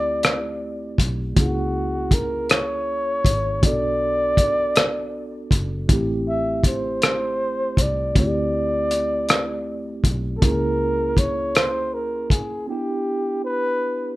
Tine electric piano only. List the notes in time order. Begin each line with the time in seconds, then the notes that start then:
Already playing: A3 C4 E4 G4
1.35 A#3 C#4 E4
1.40 G#4
3.61 B3 D4 F#4
3.67 A4
5.88 A3 C4 E4
5.93 G4
8.15 A3 C4 E4
8.20 F#4
8.27 G4
10.41 A#3 C#4 E4
10.46 G#4
12.67 B3 D4 E4
12.72 G4